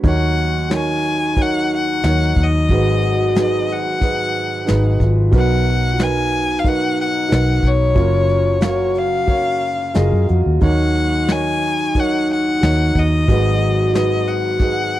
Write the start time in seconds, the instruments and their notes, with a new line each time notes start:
0.03 upright piano D#2 D#3 F#3 D#4 A#4 C#5, fingered electric bass D#2, french horn D#4, kick, closed hi-hat
0.08 violin F#5
0.37 closed hi-hat
0.70 upright piano F#3 D#4 A#4 C#5, snare, closed hi-hat
0.75 violin G#5
1.03 closed hi-hat
1.37 upright piano F#3 D#4 A#4 C#5, kick, closed hi-hat
1.42 violin F#5
1.70 closed hi-hat
1.76 violin F#5
2.02 fingered electric bass D#2, upright piano F#3 D#4 A#4 C#5, snare, closed hi-hat
2.36 fingered electric bass D#2, kick, closed hi-hat
2.43 violin D#5
2.68 fingered electric bass G#1, upright piano G#1 G#2 F#3 D#4 G#4 B4, french horn F#4, kick, closed hi-hat
3.02 closed hi-hat
3.35 upright piano F#3 D#4 G#4 B4, snare, closed hi-hat
3.42 violin D#5
3.69 violin F#5, closed hi-hat
4.01 upright piano F#3 D#4 G#4 B4, kick, closed hi-hat
4.34 closed hi-hat
4.66 upright piano F#3 D#4 G#4 B4, french horn D#4, snare, closed hi-hat
4.70 fingered electric bass G#1
5.00 fingered electric bass G#1, french horn F4, kick, closed hi-hat
5.31 fingered electric bass B1, upright piano B1 B2 F#3 D#4 A#4 B4, french horn F#4, kick, closed hi-hat
5.38 violin F#5
5.65 closed hi-hat
5.93 french horn F4
5.98 upright piano F#3 D#4 A#4 B4, french horn D#4, snare, closed hi-hat
6.03 violin G#5
6.32 closed hi-hat
6.59 violin F5
6.64 upright piano F#3 D#4 A#4 B4, violin F#5, kick, closed hi-hat
6.98 violin F#5, closed hi-hat
7.28 fingered electric bass B1, upright piano F#3 D#4 A#4 B4, snare, closed hi-hat
7.63 fingered electric bass B1, violin C#5, kick, closed hi-hat
7.95 fingered electric bass F#1, upright piano F#1 F#2 F#3 F4 A#4 C#5, french horn F4, kick, closed hi-hat
8.29 closed hi-hat
8.61 upright piano F#3 A#4 C#5 F5, french horn F#4, violin C#5, snare, closed hi-hat
8.95 violin F5, closed hi-hat
9.27 upright piano F#3 A#4 C#5 F5, kick, closed hi-hat
9.61 closed hi-hat
9.94 fingered electric bass F#1, upright piano F#3 F4 A#4 D#5, french horn G#4, snare, closed hi-hat
10.12 fingered electric bass F#2
10.28 fingered electric bass F2, french horn F#4, closed hi-hat
10.46 fingered electric bass D#2
10.61 upright piano D#2 D#3 F#3 D#4 A#4 C#5, fingered electric bass D#2, french horn D#4, violin F#5, kick, closed hi-hat
10.95 closed hi-hat
11.27 upright piano F#3 D#4 A#4 C#5, snare, closed hi-hat
11.31 violin G#5
11.61 closed hi-hat
11.95 upright piano F#3 D#4 A#4 C#5, kick, closed hi-hat
12.00 violin F#5
12.28 closed hi-hat
12.33 violin F#5
12.61 fingered electric bass D#2, upright piano F#3 D#4 A#4 C#5, snare, closed hi-hat
12.95 fingered electric bass D#2, violin D#5, kick, closed hi-hat
13.28 fingered electric bass G#1, upright piano G#1 G#2 F#3 D#4 G#4 B4, french horn F#4, kick, closed hi-hat
13.61 closed hi-hat
13.93 upright piano F#3 D#4 G#4 B4, violin D#5, snare, closed hi-hat
14.28 violin F#5, closed hi-hat
14.60 upright piano F#3 D#4 G#4 B4, kick, closed hi-hat
14.93 closed hi-hat